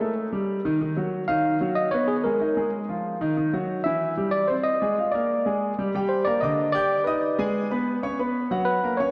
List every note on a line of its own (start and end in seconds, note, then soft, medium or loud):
0.00 0.27 A3 medium
0.00 0.27 A4 medium
0.00 0.13 A#4 medium
0.33 0.59 G3 medium
0.33 0.59 G4 medium
0.65 0.78 D#3 medium
0.65 0.78 D#4 medium
0.81 0.94 D#3 medium
0.81 0.94 D#4 medium
0.97 1.23 F#3 medium
0.97 1.23 F#4 medium
1.28 1.55 D#3 medium
1.28 1.55 D#4 medium
1.28 1.58 F5 medium
1.61 1.87 F#3 medium
1.61 1.87 F#4 medium
1.75 1.93 D#5 medium
1.91 2.20 B3 medium
1.91 2.20 B4 medium
1.91 2.07 C#5 medium
2.08 2.15 G#4 medium
2.24 2.38 G#3 medium
2.24 2.38 G#4 medium
2.24 2.69 A#4 medium
2.41 2.54 D#4 medium
2.41 2.54 D#5 medium
2.57 2.83 G#3 medium
2.57 2.83 G#4 medium
2.89 3.15 F3 medium
2.89 3.16 F4 medium
3.21 3.34 D#3 medium
3.21 3.35 D#4 medium
3.37 3.50 D#3 medium
3.37 3.51 D#4 medium
3.53 3.80 F#3 medium
3.53 3.80 F#4 medium
3.84 4.12 E3 medium
3.84 4.12 E4 medium
3.84 4.15 E5 medium
4.17 4.44 G3 medium
4.17 4.44 G4 medium
4.31 4.47 D5 medium
4.48 4.76 C4 medium
4.48 4.55 C5 medium
4.48 4.76 C5 medium
4.64 5.14 D#5 medium
4.82 4.95 G#3 medium
4.82 4.95 G#4 medium
4.98 5.11 F4 medium
4.98 5.11 F5 medium
5.12 5.40 A#3 medium
5.12 5.40 A#4 medium
5.12 5.73 D5 medium
5.46 5.72 G#3 medium
5.46 5.72 G#4 medium
5.79 5.92 G3 medium
5.79 5.92 G4 medium
5.95 6.21 G3 medium
5.95 6.21 G4 medium
5.95 6.21 G5 medium
6.09 6.26 C5 medium
6.25 6.39 A#3 medium
6.25 6.40 A#4 medium
6.25 6.42 D5 loud
6.25 6.40 A#5 medium
6.41 6.69 D3 medium
6.41 6.71 D#5 medium
6.41 6.69 D#5 medium
6.41 6.69 D6 medium
6.72 7.01 G4 medium
6.72 7.03 D5 loud
6.72 7.01 G5 medium
6.72 7.01 G6 medium
7.04 7.33 D#4 medium
7.04 8.30 B4 medium
7.04 7.33 D#5 medium
7.04 7.33 D#6 medium
7.39 7.65 G#3 medium
7.39 7.65 G#4 medium
7.39 7.65 G#5 medium
7.71 7.97 B3 medium
7.71 7.97 B4 medium
7.71 7.98 B5 medium
8.03 8.16 C#4 medium
8.03 8.16 C#5 medium
8.03 8.16 C#6 medium
8.19 8.45 B3 medium
8.19 8.45 B4 medium
8.19 8.46 B5 medium
8.51 8.77 F#3 medium
8.51 8.77 F#4 medium
8.51 8.78 F#5 medium
8.65 8.99 B4 medium
8.83 8.96 A#3 medium
8.83 8.97 A#4 medium
8.83 8.97 A#5 medium
8.97 9.11 C#4 medium
8.97 9.11 C#5 medium
8.97 9.11 C#6 medium